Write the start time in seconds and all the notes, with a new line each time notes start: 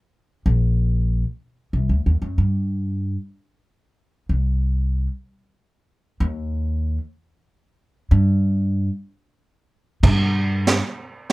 0.46 A#1
1.73 C2
1.89 D2
2.06 D#2
2.22 F#2
2.38 G2
4.29 C2
6.20 D#2
8.11 G2
10.03 G2, kick, crash
10.67 snare, closed hi-hat